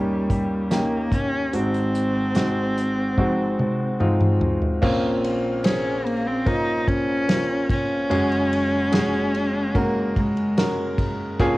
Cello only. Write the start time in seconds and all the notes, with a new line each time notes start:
Already playing: G3
0.72 A#3
1.14 C#4
1.54 C4
5.65 C#4
6.06 A#3
6.27 C4
6.47 D#4
6.88 C#4
7.71 C#4
9.78 A#3
10.19 G#3